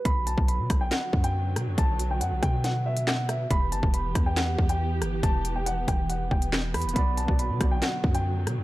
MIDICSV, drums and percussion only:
0, 0, Header, 1, 2, 480
1, 0, Start_track
1, 0, Key_signature, 2, "minor"
1, 0, Tempo, 431655
1, 59, Time_signature, 4, 2, 24, 8
1, 9603, End_track
2, 0, Start_track
2, 0, Title_t, "Drums"
2, 58, Note_on_c, 9, 36, 112
2, 58, Note_on_c, 9, 42, 89
2, 169, Note_off_c, 9, 36, 0
2, 169, Note_off_c, 9, 42, 0
2, 298, Note_on_c, 9, 42, 73
2, 409, Note_off_c, 9, 42, 0
2, 418, Note_on_c, 9, 36, 98
2, 530, Note_off_c, 9, 36, 0
2, 538, Note_on_c, 9, 42, 81
2, 649, Note_off_c, 9, 42, 0
2, 778, Note_on_c, 9, 36, 104
2, 778, Note_on_c, 9, 42, 86
2, 779, Note_on_c, 9, 37, 96
2, 889, Note_off_c, 9, 36, 0
2, 889, Note_off_c, 9, 42, 0
2, 890, Note_off_c, 9, 37, 0
2, 1017, Note_on_c, 9, 38, 106
2, 1018, Note_on_c, 9, 42, 76
2, 1021, Note_on_c, 9, 39, 87
2, 1128, Note_off_c, 9, 38, 0
2, 1129, Note_off_c, 9, 42, 0
2, 1132, Note_off_c, 9, 39, 0
2, 1258, Note_on_c, 9, 36, 85
2, 1369, Note_off_c, 9, 36, 0
2, 1378, Note_on_c, 9, 42, 73
2, 1489, Note_off_c, 9, 42, 0
2, 1738, Note_on_c, 9, 37, 93
2, 1738, Note_on_c, 9, 42, 80
2, 1849, Note_off_c, 9, 37, 0
2, 1849, Note_off_c, 9, 42, 0
2, 1978, Note_on_c, 9, 36, 110
2, 1978, Note_on_c, 9, 42, 89
2, 2089, Note_off_c, 9, 36, 0
2, 2089, Note_off_c, 9, 42, 0
2, 2218, Note_on_c, 9, 42, 75
2, 2329, Note_off_c, 9, 42, 0
2, 2458, Note_on_c, 9, 42, 85
2, 2569, Note_off_c, 9, 42, 0
2, 2698, Note_on_c, 9, 36, 105
2, 2698, Note_on_c, 9, 37, 91
2, 2698, Note_on_c, 9, 42, 87
2, 2809, Note_off_c, 9, 36, 0
2, 2809, Note_off_c, 9, 37, 0
2, 2809, Note_off_c, 9, 42, 0
2, 2937, Note_on_c, 9, 38, 66
2, 2938, Note_on_c, 9, 42, 73
2, 3048, Note_off_c, 9, 38, 0
2, 3049, Note_off_c, 9, 42, 0
2, 3298, Note_on_c, 9, 42, 71
2, 3409, Note_off_c, 9, 42, 0
2, 3418, Note_on_c, 9, 38, 125
2, 3422, Note_on_c, 9, 39, 99
2, 3529, Note_off_c, 9, 38, 0
2, 3533, Note_off_c, 9, 39, 0
2, 3658, Note_on_c, 9, 37, 88
2, 3658, Note_on_c, 9, 42, 71
2, 3769, Note_off_c, 9, 37, 0
2, 3769, Note_off_c, 9, 42, 0
2, 3898, Note_on_c, 9, 36, 107
2, 3898, Note_on_c, 9, 42, 85
2, 4009, Note_off_c, 9, 36, 0
2, 4009, Note_off_c, 9, 42, 0
2, 4138, Note_on_c, 9, 42, 74
2, 4249, Note_off_c, 9, 42, 0
2, 4258, Note_on_c, 9, 36, 96
2, 4369, Note_off_c, 9, 36, 0
2, 4378, Note_on_c, 9, 42, 87
2, 4489, Note_off_c, 9, 42, 0
2, 4618, Note_on_c, 9, 36, 104
2, 4618, Note_on_c, 9, 42, 88
2, 4619, Note_on_c, 9, 37, 93
2, 4729, Note_off_c, 9, 36, 0
2, 4730, Note_off_c, 9, 37, 0
2, 4730, Note_off_c, 9, 42, 0
2, 4857, Note_on_c, 9, 38, 108
2, 4858, Note_on_c, 9, 42, 76
2, 4862, Note_on_c, 9, 39, 86
2, 4969, Note_off_c, 9, 38, 0
2, 4969, Note_off_c, 9, 42, 0
2, 4973, Note_off_c, 9, 39, 0
2, 5098, Note_on_c, 9, 36, 90
2, 5210, Note_off_c, 9, 36, 0
2, 5219, Note_on_c, 9, 42, 73
2, 5330, Note_off_c, 9, 42, 0
2, 5578, Note_on_c, 9, 37, 92
2, 5578, Note_on_c, 9, 42, 81
2, 5690, Note_off_c, 9, 37, 0
2, 5690, Note_off_c, 9, 42, 0
2, 5818, Note_on_c, 9, 36, 107
2, 5818, Note_on_c, 9, 42, 85
2, 5929, Note_off_c, 9, 36, 0
2, 5930, Note_off_c, 9, 42, 0
2, 6058, Note_on_c, 9, 42, 73
2, 6169, Note_off_c, 9, 42, 0
2, 6298, Note_on_c, 9, 42, 85
2, 6410, Note_off_c, 9, 42, 0
2, 6538, Note_on_c, 9, 36, 106
2, 6538, Note_on_c, 9, 42, 90
2, 6539, Note_on_c, 9, 37, 93
2, 6649, Note_off_c, 9, 36, 0
2, 6650, Note_off_c, 9, 37, 0
2, 6650, Note_off_c, 9, 42, 0
2, 6779, Note_on_c, 9, 42, 74
2, 6890, Note_off_c, 9, 42, 0
2, 7018, Note_on_c, 9, 36, 87
2, 7130, Note_off_c, 9, 36, 0
2, 7139, Note_on_c, 9, 42, 72
2, 7250, Note_off_c, 9, 42, 0
2, 7259, Note_on_c, 9, 38, 124
2, 7263, Note_on_c, 9, 39, 100
2, 7370, Note_off_c, 9, 38, 0
2, 7374, Note_off_c, 9, 39, 0
2, 7499, Note_on_c, 9, 37, 92
2, 7499, Note_on_c, 9, 42, 64
2, 7499, Note_on_c, 9, 46, 59
2, 7579, Note_off_c, 9, 42, 0
2, 7579, Note_on_c, 9, 42, 63
2, 7610, Note_off_c, 9, 37, 0
2, 7610, Note_off_c, 9, 46, 0
2, 7658, Note_off_c, 9, 42, 0
2, 7658, Note_on_c, 9, 42, 60
2, 7738, Note_off_c, 9, 42, 0
2, 7738, Note_on_c, 9, 36, 109
2, 7738, Note_on_c, 9, 42, 89
2, 7849, Note_off_c, 9, 36, 0
2, 7849, Note_off_c, 9, 42, 0
2, 7978, Note_on_c, 9, 42, 76
2, 8090, Note_off_c, 9, 42, 0
2, 8098, Note_on_c, 9, 36, 93
2, 8210, Note_off_c, 9, 36, 0
2, 8218, Note_on_c, 9, 42, 85
2, 8330, Note_off_c, 9, 42, 0
2, 8458, Note_on_c, 9, 36, 104
2, 8458, Note_on_c, 9, 42, 86
2, 8459, Note_on_c, 9, 37, 98
2, 8569, Note_off_c, 9, 36, 0
2, 8569, Note_off_c, 9, 42, 0
2, 8570, Note_off_c, 9, 37, 0
2, 8698, Note_on_c, 9, 38, 108
2, 8698, Note_on_c, 9, 42, 73
2, 8702, Note_on_c, 9, 39, 89
2, 8809, Note_off_c, 9, 38, 0
2, 8809, Note_off_c, 9, 42, 0
2, 8813, Note_off_c, 9, 39, 0
2, 8938, Note_on_c, 9, 36, 87
2, 9049, Note_off_c, 9, 36, 0
2, 9058, Note_on_c, 9, 42, 72
2, 9169, Note_off_c, 9, 42, 0
2, 9418, Note_on_c, 9, 37, 90
2, 9418, Note_on_c, 9, 42, 78
2, 9529, Note_off_c, 9, 37, 0
2, 9529, Note_off_c, 9, 42, 0
2, 9603, End_track
0, 0, End_of_file